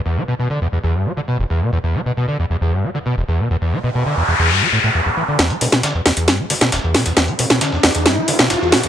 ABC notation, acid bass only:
X:1
M:4/4
L:1/16
Q:1/4=135
K:Em
V:1 name="Acid bass" clef=bass
E,, G, B,, B,, D, E,, E,, E,, G,, G, D, B,, E,,, E,, B,, E,, | E,, G, B,, B,, D, E,, E,, E,, G,, G, D, B,, E,,, E,, B,, E,, | E,, G, B,, B,, D, E,, E,, E,, G,, G, A,, A,, E,, E,, E, D, | E,, G, B,, B,, D, E,, E,, E,, G,, G, D, B,, E,,, E,, B,, E,, |
E,, G, B,, B,, D, E,, E,, E,, G,, G, D, B,, E,,, E,, B,, E,, |]